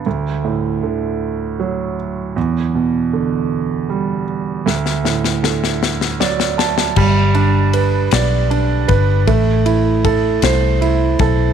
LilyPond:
<<
  \new Staff \with { instrumentName = "Grand piano" } { \time 6/8 \key g \major \tempo 4. = 52 r2. | r2. | r2 d''8 a''8 | r2. |
r2. | }
  \new Staff \with { instrumentName = "Grand piano" } { \clef bass \time 6/8 \key g \major d,8 a,8 d4 fis4 | e,8 b,8 d4 g4 | d,8 a,8 d4 fis4 | g8 d'8 b'8 d''8 d'8 b'8 |
a8 e'8 a'8 c''8 e'8 a'8 | }
  \new Staff \with { instrumentName = "Fingered electric bass" } { \clef bass \time 6/8 \key g \major r2. | r2. | r2. | g,,4. b,,4 g,,8 |
a,,4. c,4 b,,8 | }
  \new DrumStaff \with { instrumentName = "Drums" } \drummode { \time 6/8 r4. r4. | r4. r4. | sn16 sn16 sn16 sn16 sn16 sn16 sn16 sn16 sn16 sn16 sn16 sn16 | <cymc bd>8 cymr8 cymr8 <cymr sn>8 cymr8 <bd cymr>8 |
<bd cymr>8 cymr8 <bd cymr>8 <cymr sn>8 cymr8 <bd cymr>8 | }
>>